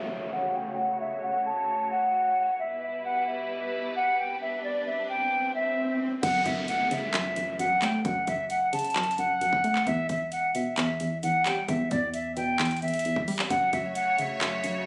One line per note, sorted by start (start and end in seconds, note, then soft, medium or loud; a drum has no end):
0.00 2.56 C#3 medium
0.00 2.56 A3 medium
0.00 2.56 F#4 medium
0.00 2.56 C#5 medium
0.00 0.28 E5 medium
0.00 downlifter medium
0.32 0.53 F#5 medium
0.55 0.76 G5 medium
0.77 0.98 F#5 medium
1.00 1.21 E5 medium
1.23 1.44 F#5 medium
1.46 1.88 A5 medium
1.91 2.55 F#5 medium
2.59 6.19 B2 medium
2.59 6.19 G3 medium
2.59 4.39 E4 medium
2.59 6.19 B4 medium
2.59 2.80 E5 loud
2.59 swell medium
2.82 3.03 E5 medium
3.05 3.26 F#5 medium
3.27 3.92 E5 medium
3.96 4.17 F#5 medium
4.19 4.40 G5 medium
4.41 6.21 D4 medium
4.41 4.62 E5 medium
4.64 4.85 D5 medium
4.87 5.07 E5 medium
5.09 5.52 G5 medium
5.55 5.95 E5 loud
6.23 6.45 F#1 loud
6.23 6.45 F#2 medium
6.23 6.44 F#5 loud
6.23 kick loud
6.23 closed hi-hat medium
6.23 crash loud
6.23 downlifter medium
6.46 7.78 F#1 loud
6.46 7.13 F#2 medium
6.46 6.66 E5 medium
6.46 kick medium
6.46 closed hi-hat medium
6.68 6.89 F#5 medium
6.68 closed hi-hat medium
6.91 8.05 C#3 medium
6.91 7.56 E5 medium
6.91 closed hi-hat medium
7.14 7.35 F#2 medium
7.14 clap loud
7.14 closed hi-hat medium
7.36 7.58 F#2 medium
7.36 closed hi-hat medium
7.59 8.04 F#2 medium
7.59 7.80 F#5 medium
7.59 closed hi-hat medium
7.82 8.96 A3 medium
7.82 8.03 G5 medium
7.82 clap loud
7.82 closed hi-hat medium
8.04 8.27 F#1 loud
8.04 8.26 F#2 loud
8.04 8.25 F#5 medium
8.04 kick loud
8.04 closed hi-hat medium
8.27 9.49 F#1 loud
8.27 8.94 F#2 medium
8.27 8.48 E5 medium
8.27 kick medium
8.27 closed hi-hat medium
8.50 8.71 F#5 medium
8.50 closed hi-hat medium
8.73 9.87 C#3 medium
8.73 9.16 A5 medium
8.73 closed hi-hat medium
8.73 open hi-hat medium
8.79 closed hi-hat medium
8.84 closed hi-hat medium
8.90 closed hi-hat soft
8.96 9.17 F#2 medium
8.96 clap loud
8.96 closed hi-hat soft
9.03 closed hi-hat medium
9.11 closed hi-hat medium
9.18 9.40 F#2 medium
9.18 9.83 F#5 loud
9.18 closed hi-hat medium
9.41 9.87 F#2 medium
9.41 closed hi-hat medium
9.53 9.85 E1 loud
9.53 kick loud
9.64 9.87 A3 medium
9.64 closed hi-hat medium
9.75 clap medium
9.87 10.09 E1 loud
9.87 10.08 E2 loud
9.87 10.07 E5 loud
9.87 kick loud
9.87 closed hi-hat medium
10.09 11.42 E1 loud
10.09 10.76 E2 medium
10.09 10.30 E5 medium
10.09 kick medium
10.09 closed hi-hat medium
10.32 10.53 F#5 medium
10.32 closed hi-hat medium
10.54 11.69 B2 medium
10.54 11.19 E5 medium
10.54 closed hi-hat medium
10.77 10.99 E2 medium
10.77 clap loud
10.77 closed hi-hat medium
11.00 11.22 E2 medium
11.00 closed hi-hat medium
11.23 11.67 E2 medium
11.23 11.44 F#5 medium
11.23 closed hi-hat medium
11.46 12.59 G3 medium
11.46 11.67 G5 medium
11.46 clap loud
11.46 closed hi-hat medium
11.68 11.90 E1 loud
11.68 11.90 E2 medium
11.68 11.89 E5 medium
11.68 kick loud
11.68 closed hi-hat medium
11.91 12.68 E2 loud
11.91 12.58 E2 medium
11.91 12.12 D5 medium
11.91 kick medium
11.91 closed hi-hat medium
12.14 12.35 E5 medium
12.14 closed hi-hat medium
12.37 13.50 B2 medium
12.37 12.79 G5 medium
12.37 closed hi-hat medium
12.59 12.81 E2 medium
12.59 clap loud
12.59 closed hi-hat medium
12.65 closed hi-hat medium
12.71 closed hi-hat medium
12.77 closed hi-hat medium
12.82 13.04 E2 medium
12.82 13.20 E5 loud
12.82 closed hi-hat soft
12.88 closed hi-hat medium
12.94 closed hi-hat medium
12.99 closed hi-hat medium
13.05 13.50 E2 medium
13.05 closed hi-hat medium
13.16 13.49 E1 loud
13.16 kick loud
13.28 13.50 G3 medium
13.28 open hi-hat medium
13.39 clap loud
13.50 13.72 F#1 loud
13.50 13.72 F#2 medium
13.50 14.86 C#3 medium
13.50 14.86 A3 medium
13.50 14.86 F#4 medium
13.50 14.86 C#5 medium
13.50 13.71 F#5 loud
13.50 kick loud
13.50 closed hi-hat medium
13.73 14.86 F#1 loud
13.73 14.40 F#2 medium
13.73 13.94 E5 medium
13.73 kick medium
13.73 closed hi-hat medium
13.95 14.17 F#5 medium
13.95 closed hi-hat medium
14.18 14.86 C#3 medium
14.18 14.83 E5 medium
14.18 closed hi-hat medium
14.41 14.63 F#2 medium
14.41 clap loud
14.41 closed hi-hat medium
14.64 14.86 F#2 medium
14.64 closed hi-hat medium